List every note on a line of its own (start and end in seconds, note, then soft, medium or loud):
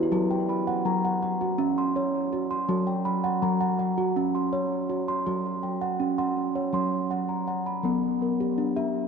0.00 0.20 E4 medium
0.00 0.11 G4 medium
0.12 0.44 F#3 loud
0.12 0.49 F#4 medium
0.31 0.85 G5 medium
0.49 1.04 B5 medium
0.67 1.03 F#5 medium
0.85 1.49 F#3 medium
0.85 1.41 A#5 medium
1.05 1.21 F#5 medium
1.23 1.77 F#5 medium
1.41 1.77 F#4 medium
1.58 2.54 C#4 medium
1.78 2.33 C6 medium
1.96 2.32 C#5 medium
2.33 2.68 F#4 medium
2.51 3.06 C6 medium
2.69 3.01 F#3 loud
2.69 3.06 F#4 medium
2.87 3.42 G5 medium
3.05 3.61 B5 medium
3.24 3.59 F#5 medium
3.42 4.06 F#3 loud
3.42 3.98 A#5 medium
3.61 3.78 F#5 medium
3.79 4.34 F#5 medium
3.98 4.34 F#4 medium
4.16 5.12 C#4 medium
4.35 4.90 C6 medium
4.53 4.89 C#5 medium
4.89 5.25 F#4 medium
5.08 5.45 C6 medium
5.26 6.00 F#3 medium
5.26 5.63 F#4 medium
5.63 6.18 G5 medium
5.81 6.17 F#5 medium
6.00 6.64 C#4 medium
6.18 6.55 F#5 medium
6.18 6.73 C6 medium
6.55 6.92 C#5 medium
6.73 7.69 F#3 medium
6.73 7.29 C6 medium
7.11 7.46 F#5 medium
7.29 7.84 A#5 soft
7.47 7.84 F#5 medium
7.66 8.03 B5 medium
7.83 8.57 F#3 medium
7.83 8.21 B3 medium
8.22 8.77 A#4 medium
8.40 8.75 G4 medium
8.58 9.08 D4 medium
8.76 9.08 G4 medium
8.76 9.08 E5 medium